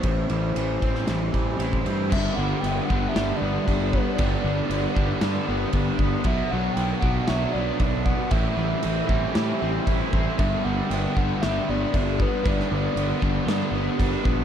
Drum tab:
CC |----------------|x---x---x---x---|x---x---x---x---|x---x---x---x---|
RD |x-x-x-x-x-x-x-x-|----------------|----------------|----------------|
SD |-------oo-------|--------o-------|--------o-------|--------o-------|
BD |o-----o---o--o--|o-----o-----o-o-|o-----o-----o-o-|o-----o-----o-o-|

CC |x---x---x---x---|x---x---x---x---|x---x---x---x---|
RD |----------------|----------------|----------------|
SD |--------o-------|--------o-------|-o------o-------|
BD |o-----o-----o-o-|o-----o-----o-o-|o-----o-----o-o-|